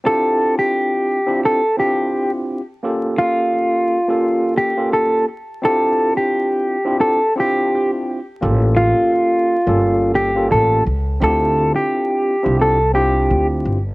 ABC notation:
X:1
M:4/4
L:1/16
Q:"Swing 16ths" 1/4=86
K:Dm
V:1 name="Clean electric guitar"
A3 G4- G A2 G3 z3 | z2 F8 G2 A2 z2 | A3 G4- G A2 G3 z3 | z2 F8 G2 A2 z2 |
A3 G4- G A2 G3 z3 |]
V:2 name="Tine electric piano"
[CDEFG]6 z [CDEFG]2 z [CDEFG]4- [CDEFG] z | [B,^CFGA]6 z [B,CFGA]4 [B,CFGA]3 z2 | [CDEFG]6 z [CDEFG]2 z [CDEFG]4- [CDEFG] z | [B,^CFGA]6 z [B,CFGA]4 [B,CFGA]3 z2 |
[CDEFG]6 z [CDEFG]2 z [CDEFG]4- [CDEFG] z |]
V:3 name="Upright bass" clef=bass
z16 | z16 | z16 | A,,,3 z4 G,,,4- G,,, A,,,2 ^C,,2 |
D,,3 z4 C,,4- C,, D,,2 G,,,2 |]